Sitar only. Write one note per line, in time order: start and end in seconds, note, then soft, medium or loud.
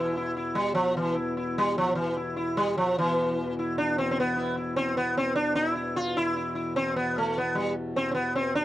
0.00 0.31 E3 medium
0.00 0.15 E4 soft
0.17 0.35 E4 soft
0.37 0.55 E4 soft
0.55 0.74 G3 medium
0.75 0.96 F3 medium
0.97 1.15 E3 medium
1.15 1.34 E4 soft
1.37 1.55 E4 soft
1.58 1.77 G3 medium
1.78 1.95 F3 medium
1.95 2.14 E3 medium
2.17 2.35 E4 soft
2.36 2.55 E4 soft
2.57 2.75 G3 loud
2.78 2.98 F3 medium
2.98 3.54 E3 medium
2.98 3.16 E4 soft
3.59 3.77 E4 soft
3.78 3.98 D4 medium
3.98 4.10 C4 medium
4.11 4.17 C4 medium
4.20 4.56 B3 medium
4.37 4.55 E4 soft
4.57 4.76 E4 soft
4.76 4.97 C4 medium
4.97 5.17 B3 medium
5.17 5.35 C4 medium
5.35 5.55 D4 loud
5.55 5.74 D#4 medium
5.75 5.94 E4 soft
5.96 6.17 F4 medium
6.17 6.35 E4 medium
6.36 6.54 E4 soft
6.55 6.74 E4 soft
6.76 6.96 C4 medium
6.96 7.16 B3 medium
7.18 7.37 A3 medium
7.38 7.55 B3 medium
7.55 7.74 G3 medium
7.96 8.10 C4 medium
8.11 8.35 B3 medium
8.11 8.14 C4 medium
8.35 8.55 C4 medium
8.55 8.65 D4 medium